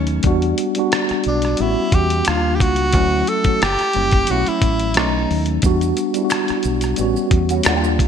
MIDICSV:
0, 0, Header, 1, 7, 480
1, 0, Start_track
1, 0, Tempo, 674157
1, 169, Time_signature, 4, 2, 24, 8
1, 5752, End_track
2, 0, Start_track
2, 0, Title_t, "Tenor saxophone"
2, 0, Program_c, 0, 66
2, 909, Note_on_c, 0, 62, 72
2, 1147, Note_on_c, 0, 64, 82
2, 1158, Note_off_c, 0, 62, 0
2, 1382, Note_on_c, 0, 67, 90
2, 1393, Note_off_c, 0, 64, 0
2, 1620, Note_on_c, 0, 65, 79
2, 1631, Note_off_c, 0, 67, 0
2, 1819, Note_on_c, 0, 67, 64
2, 1829, Note_off_c, 0, 65, 0
2, 1861, Note_on_c, 0, 66, 96
2, 1872, Note_off_c, 0, 67, 0
2, 2340, Note_on_c, 0, 69, 92
2, 2351, Note_off_c, 0, 66, 0
2, 2581, Note_on_c, 0, 67, 96
2, 2592, Note_off_c, 0, 69, 0
2, 3065, Note_on_c, 0, 66, 82
2, 3076, Note_off_c, 0, 67, 0
2, 3192, Note_on_c, 0, 64, 88
2, 3203, Note_off_c, 0, 66, 0
2, 3544, Note_on_c, 0, 63, 71
2, 3555, Note_off_c, 0, 64, 0
2, 3906, Note_off_c, 0, 63, 0
2, 5752, End_track
3, 0, Start_track
3, 0, Title_t, "Tine electric piano"
3, 0, Program_c, 1, 4
3, 0, Control_c, 1, 64, 127
3, 0, Note_on_c, 1, 54, 66
3, 0, Note_on_c, 1, 57, 65
3, 0, Note_on_c, 1, 61, 62
3, 0, Note_on_c, 1, 63, 74
3, 81, Note_off_c, 1, 54, 0
3, 84, Note_off_c, 1, 57, 0
3, 88, Note_off_c, 1, 61, 0
3, 93, Note_off_c, 1, 63, 0
3, 168, Note_on_c, 1, 55, 96
3, 176, Note_on_c, 1, 59, 84
3, 178, Control_c, 1, 64, 0
3, 185, Note_on_c, 1, 62, 89
3, 192, Note_on_c, 1, 66, 107
3, 286, Control_c, 1, 64, 127
3, 452, Note_off_c, 1, 55, 0
3, 456, Note_off_c, 1, 59, 0
3, 461, Note_off_c, 1, 62, 0
3, 465, Note_off_c, 1, 66, 0
3, 542, Note_on_c, 1, 55, 72
3, 549, Note_on_c, 1, 59, 71
3, 557, Note_on_c, 1, 62, 71
3, 565, Note_on_c, 1, 66, 87
3, 1125, Note_off_c, 1, 55, 0
3, 1132, Note_off_c, 1, 59, 0
3, 1134, Note_on_c, 1, 55, 67
3, 1138, Note_off_c, 1, 62, 0
3, 1138, Control_c, 1, 64, 0
3, 1141, Note_on_c, 1, 59, 67
3, 1142, Note_off_c, 1, 66, 0
3, 1148, Note_on_c, 1, 61, 60
3, 1158, Note_on_c, 1, 66, 79
3, 1257, Control_c, 1, 64, 127
3, 1523, Note_off_c, 1, 55, 0
3, 1526, Note_off_c, 1, 59, 0
3, 1530, Note_off_c, 1, 61, 0
3, 1535, Note_off_c, 1, 66, 0
3, 1613, Note_on_c, 1, 55, 66
3, 1620, Control_c, 1, 64, 0
3, 1621, Note_on_c, 1, 58, 59
3, 1628, Note_on_c, 1, 62, 64
3, 1637, Note_on_c, 1, 63, 60
3, 1673, Note_off_c, 1, 63, 0
3, 1684, Note_on_c, 1, 65, 76
3, 1742, Control_c, 1, 64, 127
3, 2003, Note_off_c, 1, 55, 0
3, 2006, Note_off_c, 1, 58, 0
3, 2010, Note_off_c, 1, 62, 0
3, 2038, Note_off_c, 1, 65, 0
3, 2090, Note_on_c, 1, 54, 81
3, 2098, Note_on_c, 1, 57, 72
3, 2099, Control_c, 1, 64, 0
3, 2105, Note_on_c, 1, 61, 72
3, 2115, Note_on_c, 1, 64, 88
3, 2207, Control_c, 1, 64, 127
3, 2373, Note_off_c, 1, 54, 0
3, 2377, Note_off_c, 1, 57, 0
3, 2381, Note_off_c, 1, 61, 0
3, 2386, Note_off_c, 1, 64, 0
3, 2458, Note_on_c, 1, 54, 62
3, 2465, Note_on_c, 1, 57, 60
3, 2473, Note_on_c, 1, 61, 58
3, 2481, Note_on_c, 1, 66, 71
3, 2569, Note_off_c, 1, 54, 0
3, 2572, Note_off_c, 1, 57, 0
3, 2576, Note_off_c, 1, 61, 0
3, 2578, Control_c, 1, 64, 0
3, 2580, Note_off_c, 1, 66, 0
3, 2704, Control_c, 1, 64, 127
3, 2807, Note_on_c, 1, 55, 59
3, 2815, Note_on_c, 1, 58, 52
3, 2823, Note_on_c, 1, 61, 54
3, 2831, Note_on_c, 1, 64, 65
3, 3047, Note_on_c, 1, 54, 63
3, 3048, Note_off_c, 1, 55, 0
3, 3052, Note_off_c, 1, 58, 0
3, 3054, Note_on_c, 1, 57, 59
3, 3056, Note_off_c, 1, 61, 0
3, 3058, Control_c, 1, 64, 0
3, 3060, Note_off_c, 1, 64, 0
3, 3064, Note_on_c, 1, 61, 64
3, 3072, Note_on_c, 1, 64, 76
3, 3193, Control_c, 1, 64, 127
3, 3439, Note_off_c, 1, 54, 0
3, 3443, Note_off_c, 1, 57, 0
3, 3448, Note_off_c, 1, 61, 0
3, 3452, Note_off_c, 1, 64, 0
3, 3523, Note_on_c, 1, 54, 67
3, 3532, Note_on_c, 1, 57, 66
3, 3537, Control_c, 1, 64, 0
3, 3541, Note_on_c, 1, 61, 61
3, 3546, Note_on_c, 1, 63, 76
3, 3647, Control_c, 1, 64, 127
3, 3917, Note_off_c, 1, 54, 0
3, 3922, Note_off_c, 1, 57, 0
3, 3926, Note_off_c, 1, 61, 0
3, 3929, Note_off_c, 1, 63, 0
3, 4006, Note_on_c, 1, 55, 94
3, 4014, Note_on_c, 1, 59, 81
3, 4018, Control_c, 1, 64, 0
3, 4023, Note_on_c, 1, 62, 88
3, 4031, Note_on_c, 1, 66, 106
3, 4128, Control_c, 1, 64, 127
3, 4292, Note_off_c, 1, 55, 0
3, 4295, Note_off_c, 1, 59, 0
3, 4300, Note_off_c, 1, 62, 0
3, 4304, Note_off_c, 1, 66, 0
3, 4372, Note_on_c, 1, 55, 78
3, 4382, Note_on_c, 1, 59, 67
3, 4389, Note_on_c, 1, 62, 68
3, 4399, Note_on_c, 1, 64, 65
3, 4431, Note_off_c, 1, 64, 0
3, 4446, Note_on_c, 1, 66, 78
3, 4957, Note_off_c, 1, 55, 0
3, 4965, Note_on_c, 1, 55, 83
3, 4966, Note_off_c, 1, 59, 0
3, 4974, Note_off_c, 1, 62, 0
3, 4975, Note_on_c, 1, 59, 75
3, 4978, Control_c, 1, 64, 0
3, 4982, Note_on_c, 1, 61, 74
3, 4983, Note_off_c, 1, 66, 0
3, 4992, Note_on_c, 1, 66, 85
3, 5107, Control_c, 1, 64, 127
3, 5359, Note_off_c, 1, 55, 0
3, 5363, Note_off_c, 1, 59, 0
3, 5367, Note_off_c, 1, 61, 0
3, 5372, Note_off_c, 1, 66, 0
3, 5443, Note_on_c, 1, 55, 84
3, 5452, Note_on_c, 1, 58, 70
3, 5457, Control_c, 1, 64, 0
3, 5459, Note_on_c, 1, 62, 73
3, 5467, Note_on_c, 1, 65, 94
3, 5598, Control_c, 1, 64, 127
3, 5752, Note_off_c, 1, 55, 0
3, 5752, Note_off_c, 1, 58, 0
3, 5752, Note_off_c, 1, 62, 0
3, 5752, Note_off_c, 1, 65, 0
3, 5752, End_track
4, 0, Start_track
4, 0, Title_t, "Clean electric guitar"
4, 0, Program_c, 2, 27
4, 5345, Note_on_c, 2, 66, 57
4, 5350, Note_on_c, 2, 61, 53
4, 5354, Note_on_c, 2, 59, 54
4, 5356, Note_on_c, 2, 55, 49
4, 5418, Note_off_c, 2, 66, 0
4, 5420, Note_off_c, 2, 61, 0
4, 5422, Note_off_c, 2, 59, 0
4, 5423, Note_off_c, 2, 55, 0
4, 5459, Note_on_c, 2, 53, 71
4, 5462, Note_on_c, 2, 58, 69
4, 5467, Note_on_c, 2, 62, 76
4, 5469, Note_on_c, 2, 67, 80
4, 5604, Note_off_c, 2, 53, 0
4, 5606, Note_off_c, 2, 58, 0
4, 5608, Note_off_c, 2, 62, 0
4, 5609, Note_off_c, 2, 67, 0
4, 5752, End_track
5, 0, Start_track
5, 0, Title_t, "Fingered electric bass"
5, 0, Program_c, 3, 33
5, 0, Note_on_c, 3, 39, 88
5, 135, Note_off_c, 3, 39, 0
5, 175, Note_on_c, 3, 40, 82
5, 372, Note_off_c, 3, 40, 0
5, 899, Note_on_c, 3, 35, 81
5, 1095, Note_off_c, 3, 35, 0
5, 1140, Note_on_c, 3, 33, 85
5, 1243, Note_off_c, 3, 33, 0
5, 1374, Note_on_c, 3, 40, 81
5, 1572, Note_off_c, 3, 40, 0
5, 1623, Note_on_c, 3, 39, 88
5, 1857, Note_off_c, 3, 39, 0
5, 1857, Note_on_c, 3, 37, 78
5, 2094, Note_off_c, 3, 37, 0
5, 2094, Note_on_c, 3, 38, 92
5, 2292, Note_off_c, 3, 38, 0
5, 2580, Note_on_c, 3, 30, 91
5, 2683, Note_off_c, 3, 30, 0
5, 2819, Note_on_c, 3, 30, 86
5, 3015, Note_off_c, 3, 30, 0
5, 3060, Note_on_c, 3, 35, 84
5, 3163, Note_off_c, 3, 35, 0
5, 3291, Note_on_c, 3, 33, 81
5, 3541, Note_off_c, 3, 33, 0
5, 3541, Note_on_c, 3, 35, 86
5, 3736, Note_off_c, 3, 35, 0
5, 3778, Note_on_c, 3, 39, 84
5, 3974, Note_off_c, 3, 39, 0
5, 4013, Note_on_c, 3, 40, 78
5, 4212, Note_off_c, 3, 40, 0
5, 4736, Note_on_c, 3, 35, 85
5, 4933, Note_off_c, 3, 35, 0
5, 4978, Note_on_c, 3, 33, 85
5, 5082, Note_off_c, 3, 33, 0
5, 5210, Note_on_c, 3, 40, 71
5, 5409, Note_off_c, 3, 40, 0
5, 5455, Note_on_c, 3, 39, 92
5, 5694, Note_off_c, 3, 39, 0
5, 5694, Note_on_c, 3, 37, 78
5, 5752, Note_off_c, 3, 37, 0
5, 5752, End_track
6, 0, Start_track
6, 0, Title_t, "Muted fingered electric bass strokes"
6, 789, Note_on_c, 9, 29, 41
6, 860, Note_off_c, 9, 29, 0
6, 4629, Note_on_c, 9, 29, 43
6, 4700, Note_off_c, 9, 29, 0
6, 5752, End_track
7, 0, Start_track
7, 0, Title_t, "Drums"
7, 48, Note_on_c, 9, 42, 39
7, 120, Note_off_c, 9, 42, 0
7, 162, Note_on_c, 9, 42, 69
7, 170, Note_on_c, 9, 36, 91
7, 234, Note_off_c, 9, 42, 0
7, 242, Note_off_c, 9, 36, 0
7, 300, Note_on_c, 9, 42, 30
7, 371, Note_off_c, 9, 42, 0
7, 411, Note_on_c, 9, 42, 57
7, 483, Note_off_c, 9, 42, 0
7, 533, Note_on_c, 9, 42, 42
7, 604, Note_off_c, 9, 42, 0
7, 654, Note_on_c, 9, 42, 67
7, 660, Note_on_c, 9, 37, 93
7, 725, Note_off_c, 9, 42, 0
7, 732, Note_off_c, 9, 37, 0
7, 776, Note_on_c, 9, 42, 29
7, 792, Note_on_c, 9, 37, 30
7, 847, Note_off_c, 9, 42, 0
7, 863, Note_off_c, 9, 37, 0
7, 880, Note_on_c, 9, 42, 50
7, 952, Note_off_c, 9, 42, 0
7, 1011, Note_on_c, 9, 42, 41
7, 1030, Note_on_c, 9, 37, 29
7, 1082, Note_off_c, 9, 42, 0
7, 1102, Note_off_c, 9, 37, 0
7, 1119, Note_on_c, 9, 42, 62
7, 1190, Note_off_c, 9, 42, 0
7, 1368, Note_on_c, 9, 36, 84
7, 1369, Note_on_c, 9, 42, 60
7, 1440, Note_off_c, 9, 36, 0
7, 1440, Note_off_c, 9, 42, 0
7, 1497, Note_on_c, 9, 42, 42
7, 1569, Note_off_c, 9, 42, 0
7, 1601, Note_on_c, 9, 42, 71
7, 1621, Note_on_c, 9, 37, 96
7, 1672, Note_off_c, 9, 42, 0
7, 1692, Note_off_c, 9, 37, 0
7, 1854, Note_on_c, 9, 36, 81
7, 1861, Note_on_c, 9, 42, 62
7, 1925, Note_off_c, 9, 36, 0
7, 1932, Note_off_c, 9, 42, 0
7, 1966, Note_on_c, 9, 42, 42
7, 2037, Note_off_c, 9, 42, 0
7, 2083, Note_on_c, 9, 42, 71
7, 2090, Note_on_c, 9, 36, 92
7, 2154, Note_off_c, 9, 42, 0
7, 2161, Note_off_c, 9, 36, 0
7, 2331, Note_on_c, 9, 42, 56
7, 2403, Note_off_c, 9, 42, 0
7, 2452, Note_on_c, 9, 42, 39
7, 2454, Note_on_c, 9, 36, 70
7, 2523, Note_off_c, 9, 42, 0
7, 2526, Note_off_c, 9, 36, 0
7, 2576, Note_on_c, 9, 42, 63
7, 2582, Note_on_c, 9, 37, 90
7, 2647, Note_off_c, 9, 42, 0
7, 2653, Note_off_c, 9, 37, 0
7, 2697, Note_on_c, 9, 42, 31
7, 2713, Note_on_c, 9, 37, 30
7, 2768, Note_off_c, 9, 42, 0
7, 2784, Note_off_c, 9, 37, 0
7, 2801, Note_on_c, 9, 42, 50
7, 2872, Note_off_c, 9, 42, 0
7, 2930, Note_on_c, 9, 42, 43
7, 2937, Note_on_c, 9, 36, 83
7, 3001, Note_off_c, 9, 42, 0
7, 3008, Note_off_c, 9, 36, 0
7, 3040, Note_on_c, 9, 42, 63
7, 3111, Note_off_c, 9, 42, 0
7, 3179, Note_on_c, 9, 42, 31
7, 3250, Note_off_c, 9, 42, 0
7, 3287, Note_on_c, 9, 36, 78
7, 3288, Note_on_c, 9, 42, 60
7, 3358, Note_off_c, 9, 36, 0
7, 3359, Note_off_c, 9, 42, 0
7, 3414, Note_on_c, 9, 42, 43
7, 3485, Note_off_c, 9, 42, 0
7, 3520, Note_on_c, 9, 42, 73
7, 3540, Note_on_c, 9, 37, 98
7, 3591, Note_off_c, 9, 42, 0
7, 3611, Note_off_c, 9, 37, 0
7, 3779, Note_on_c, 9, 46, 46
7, 3850, Note_off_c, 9, 46, 0
7, 3886, Note_on_c, 9, 42, 38
7, 3957, Note_off_c, 9, 42, 0
7, 4001, Note_on_c, 9, 42, 71
7, 4009, Note_on_c, 9, 36, 92
7, 4013, Note_on_c, 9, 82, 57
7, 4073, Note_off_c, 9, 42, 0
7, 4080, Note_off_c, 9, 36, 0
7, 4084, Note_off_c, 9, 82, 0
7, 4139, Note_on_c, 9, 42, 31
7, 4145, Note_on_c, 9, 82, 45
7, 4210, Note_off_c, 9, 42, 0
7, 4217, Note_off_c, 9, 82, 0
7, 4249, Note_on_c, 9, 42, 54
7, 4254, Note_on_c, 9, 82, 44
7, 4320, Note_off_c, 9, 42, 0
7, 4326, Note_off_c, 9, 82, 0
7, 4373, Note_on_c, 9, 42, 39
7, 4376, Note_on_c, 9, 82, 34
7, 4444, Note_off_c, 9, 42, 0
7, 4447, Note_off_c, 9, 82, 0
7, 4486, Note_on_c, 9, 26, 51
7, 4486, Note_on_c, 9, 82, 52
7, 4493, Note_on_c, 9, 42, 63
7, 4499, Note_on_c, 9, 37, 90
7, 4557, Note_off_c, 9, 26, 0
7, 4557, Note_off_c, 9, 82, 0
7, 4564, Note_off_c, 9, 42, 0
7, 4571, Note_off_c, 9, 37, 0
7, 4614, Note_on_c, 9, 82, 36
7, 4615, Note_on_c, 9, 42, 29
7, 4631, Note_on_c, 9, 37, 30
7, 4686, Note_off_c, 9, 42, 0
7, 4686, Note_off_c, 9, 82, 0
7, 4702, Note_off_c, 9, 37, 0
7, 4719, Note_on_c, 9, 42, 50
7, 4730, Note_on_c, 9, 82, 46
7, 4790, Note_off_c, 9, 42, 0
7, 4801, Note_off_c, 9, 82, 0
7, 4849, Note_on_c, 9, 42, 44
7, 4855, Note_on_c, 9, 82, 44
7, 4869, Note_on_c, 9, 37, 29
7, 4921, Note_off_c, 9, 42, 0
7, 4926, Note_off_c, 9, 82, 0
7, 4940, Note_off_c, 9, 37, 0
7, 4958, Note_on_c, 9, 42, 61
7, 4969, Note_on_c, 9, 82, 64
7, 5030, Note_off_c, 9, 42, 0
7, 5040, Note_off_c, 9, 82, 0
7, 5101, Note_on_c, 9, 82, 41
7, 5172, Note_off_c, 9, 82, 0
7, 5205, Note_on_c, 9, 36, 82
7, 5205, Note_on_c, 9, 42, 61
7, 5276, Note_off_c, 9, 42, 0
7, 5277, Note_off_c, 9, 36, 0
7, 5334, Note_on_c, 9, 42, 47
7, 5340, Note_on_c, 9, 82, 46
7, 5405, Note_off_c, 9, 42, 0
7, 5411, Note_off_c, 9, 82, 0
7, 5436, Note_on_c, 9, 42, 75
7, 5447, Note_on_c, 9, 26, 60
7, 5447, Note_on_c, 9, 82, 54
7, 5456, Note_on_c, 9, 37, 104
7, 5507, Note_off_c, 9, 42, 0
7, 5518, Note_off_c, 9, 26, 0
7, 5518, Note_off_c, 9, 82, 0
7, 5528, Note_off_c, 9, 37, 0
7, 5583, Note_on_c, 9, 82, 45
7, 5654, Note_off_c, 9, 82, 0
7, 5690, Note_on_c, 9, 36, 85
7, 5696, Note_on_c, 9, 42, 63
7, 5752, Note_off_c, 9, 36, 0
7, 5752, Note_off_c, 9, 42, 0
7, 5752, End_track
0, 0, End_of_file